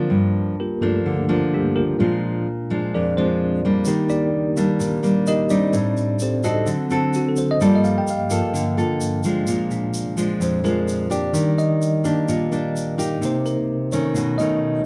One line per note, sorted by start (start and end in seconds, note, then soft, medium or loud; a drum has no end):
0.00 0.14 D3 soft
0.00 0.54 F3 medium
0.00 0.14 F#3 soft
0.00 0.55 A#3 medium
0.00 0.14 C4 soft
0.00 0.55 D4 medium
0.00 0.14 A#4 medium
0.00 0.14 C5 medium
0.10 1.02 G2 medium
0.60 0.81 A#3 soft
0.60 0.82 F4 soft
0.60 0.82 G4 soft
0.60 0.82 A#4 medium
0.81 1.13 G2 soft
0.81 1.13 F3 soft
0.81 1.25 F3 medium
0.81 1.48 A3 soft
0.81 1.13 A#3 soft
0.81 1.26 A#3 medium
0.81 1.25 D4 medium
0.81 1.48 A4 medium
1.06 1.97 D3 medium
1.29 1.95 F3 medium
1.29 1.95 A#3 medium
1.29 1.96 D4 medium
1.54 1.76 G3 soft
1.54 1.75 A#3 soft
1.54 1.76 D4 soft
1.54 1.75 G4 medium
1.76 1.98 A#3 soft
1.76 1.98 F4 medium
1.76 1.98 G4 soft
1.76 1.98 A#4 medium
1.98 3.82 A#2 soft
1.98 2.91 A#2 medium
1.98 2.46 F3 medium
1.98 3.82 G#3 soft
1.98 2.46 G#3 medium
1.98 2.94 D4 soft
1.98 2.46 D4 medium
2.70 3.13 F3 medium
2.70 3.13 G#3 medium
2.70 3.13 D4 medium
2.94 3.85 F2 medium
2.94 3.17 D4 soft
2.94 3.17 G#4 soft
2.94 3.16 A#4 soft
2.94 3.16 D5 medium
3.17 3.60 F3 medium
3.17 3.60 G#3 medium
3.17 3.83 C4 soft
3.17 3.60 D4 medium
3.17 3.83 C5 medium
3.65 4.54 G3 medium
3.65 4.54 A#3 medium
3.65 4.54 D4 medium
3.85 4.78 D#3 medium
3.85 4.10 A#3 soft
3.85 4.10 D#4 soft
3.85 4.09 G4 soft
3.85 4.09 A#4 medium
3.85 shaker medium
4.09 4.33 D4 medium
4.09 4.33 G4 medium
4.09 4.33 A#4 soft
4.09 4.32 D5 medium
4.09 shaker soft
4.56 5.70 D#3 soft
4.56 5.00 G3 medium
4.56 5.70 G3 soft
4.56 5.00 A#3 medium
4.56 5.50 D4 soft
4.56 5.00 D4 medium
4.56 shaker medium
4.80 5.71 A#2 medium
4.80 shaker medium
5.03 5.46 G3 medium
5.03 5.46 A#3 medium
5.03 5.47 D4 medium
5.03 shaker soft
5.27 5.50 D#4 medium
5.27 5.50 G4 medium
5.27 5.50 A#4 medium
5.27 5.50 D#5 medium
5.27 shaker medium
5.50 6.40 G3 medium
5.50 6.41 C4 medium
5.50 6.17 D4 medium
5.50 6.41 D#4 medium
5.50 6.17 D5 medium
5.50 shaker medium
5.72 6.64 A2 medium
5.72 6.63 A2 soft
5.72 6.63 G3 soft
5.72 6.21 C4 soft
5.72 shaker medium
5.97 shaker soft
6.19 6.44 C4 soft
6.19 6.44 G4 soft
6.19 6.44 A4 soft
6.19 6.44 C5 medium
6.19 shaker medium
6.43 6.87 C4 medium
6.43 6.59 D#4 soft
6.43 6.87 F#4 medium
6.43 6.87 A4 medium
6.43 6.59 A4 soft
6.43 6.59 C5 medium
6.43 6.58 D#5 medium
6.43 shaker medium
6.66 7.58 D3 medium
6.66 7.34 D3 soft
6.66 7.34 F#3 soft
6.66 7.34 C4 soft
6.66 shaker medium
6.90 7.57 C4 medium
6.90 7.58 F#4 medium
6.90 7.58 A4 medium
6.90 shaker soft
7.14 7.26 F#4 medium
7.14 shaker medium
7.28 7.39 A4 medium
7.36 7.49 C5 medium
7.36 shaker medium
7.51 7.62 D#5 medium
7.60 8.30 G2 soft
7.60 8.31 F3 soft
7.60 8.52 G3 medium
7.60 8.07 A#3 medium
7.60 8.31 A#3 soft
7.60 8.08 F4 soft
7.60 8.08 A4 medium
7.60 7.74 D5 medium
7.60 shaker medium
7.75 7.86 D#5 medium
7.84 7.96 F5 medium
7.84 shaker soft
7.98 8.08 G5 medium
8.07 8.75 F5 medium
8.07 shaker medium
8.30 8.53 G2 soft
8.30 8.53 F3 soft
8.30 8.74 A#3 medium
8.30 8.53 A#3 soft
8.30 8.74 F4 medium
8.30 8.74 A4 medium
8.30 shaker medium
8.53 9.45 D3 medium
8.53 shaker medium
8.77 9.21 A#3 medium
8.77 9.21 F4 medium
8.77 9.21 A4 medium
8.77 shaker soft
9.01 shaker medium
9.23 10.15 F3 medium
9.23 10.15 G#3 medium
9.23 10.15 D4 medium
9.23 shaker medium
9.47 10.39 A#2 medium
9.47 shaker medium
9.70 10.02 A#2 soft
9.70 10.03 G#3 soft
9.70 10.03 D4 soft
9.70 shaker soft
9.94 shaker medium
10.17 10.61 F3 medium
10.17 10.61 G#3 medium
10.17 10.61 D4 medium
10.17 shaker medium
10.40 11.32 F2 medium
10.40 10.65 C5 medium
10.40 shaker medium
10.64 11.08 F3 medium
10.64 11.08 G#3 medium
10.64 11.08 D4 medium
10.64 11.09 A#4 medium
10.64 shaker soft
10.88 shaker medium
11.10 12.01 A#3 medium
11.10 12.01 D4 medium
11.10 12.01 G4 medium
11.10 11.55 D5 medium
11.10 shaker medium
11.33 11.65 D#3 soft
11.33 12.26 D#3 medium
11.33 11.66 G3 soft
11.33 11.66 D4 soft
11.33 shaker medium
11.58 12.02 D#5 medium
11.58 shaker soft
11.82 shaker medium
12.04 12.48 A#3 medium
12.04 12.48 D4 medium
12.04 12.48 G4 medium
12.04 12.28 A#4 medium
12.04 shaker medium
12.28 13.20 A#2 medium
12.28 shaker medium
12.52 12.95 A#3 medium
12.52 12.95 D4 medium
12.52 12.96 G4 medium
12.52 shaker soft
12.76 shaker medium
12.98 13.88 A#3 medium
12.98 13.89 D#4 medium
12.98 13.89 G4 medium
12.98 shaker medium
13.21 14.13 C3 medium
13.21 13.53 C3 soft
13.21 13.54 A#3 soft
13.21 13.54 D#4 soft
13.21 shaker medium
13.25 13.47 C5 medium
13.46 13.89 A#4 medium
13.46 shaker soft
13.92 14.36 D#3 medium
13.92 14.36 A3 medium
13.92 14.36 C#4 medium
13.92 14.36 C#5 medium
13.92 shaker medium
14.14 14.81 B2 soft
14.14 14.86 B2 medium
14.14 14.82 A3 soft
14.14 14.82 D#4 soft
14.14 shaker medium
14.38 14.83 D#3 medium
14.38 14.83 A3 medium
14.38 14.83 C#4 medium
14.38 14.82 D#5 medium
14.38 shaker soft